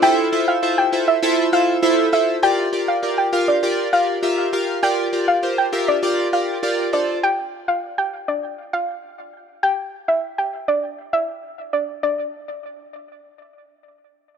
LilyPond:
<<
  \new Staff \with { instrumentName = "Synth pluck" } { \time 4/4 \key g \dorian \tempo 4 = 100 g''16 r8 f''16 r16 g''16 r16 e''8 r16 f''16 r8. e''16 r16 | g''16 r8 f''16 r16 g''16 r16 d''8 r16 f''16 r4 r16 | g''16 r8 f''16 r16 g''16 r16 d''8 r16 f''16 r8. d''16 r16 | g''16 r8 f''16 r16 g''16 r16 d''8 r16 f''16 r4 r16 |
g''16 r8 e''16 r16 g''16 r16 d''8 r16 e''16 r8. d''16 r16 | d''2. r4 | }
  \new Staff \with { instrumentName = "Synth keys" } { \time 4/4 \key g \dorian <e' f' a' c'' e''>8 <e' f' a' c'' e''>8 <e' f' a' c'' e''>8 <e' f' a' c'' e''>8 <e' f' a' c'' e''>8 <e' f' a' c'' e''>8 <e' f' a' c'' e''>8 <e' f' a' c'' e''>8 | <f' g' bes' d''>8 <f' g' bes' d''>8 <f' g' bes' d''>8 <f' g' bes' f''>8 <f' g' bes' d''>8 <f' g' bes' d''>8 <f' g' bes' e''>8 <f' g' bes' f''>8 | <f' g' bes' d''>8 <f' g' bes' d''>8 <f' g' bes' c''>8 <f' g' bes' e''>8 <f' g' bes' d''>8 <f' g' bes' d''>8 <f' g' bes' d''>8 <f' a' c'' d''>8 | r1 |
r1 | r1 | }
>>